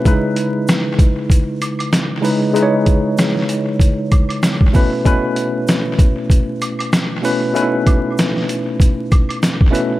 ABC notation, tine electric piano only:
X:1
M:4/4
L:1/8
Q:"Swing 16ths" 1/4=96
K:C#m
V:1 name="Tine electric piano"
[C,G,DEB]3 z4 [C,G,DEB] | [C,G,DEBc]3 z4 [B,,A,CEB] | [B,,A,CEB]3 z4 [B,,A,CEB] | [B,,A,CDEB]3 z4 [B,,A,CEB] |]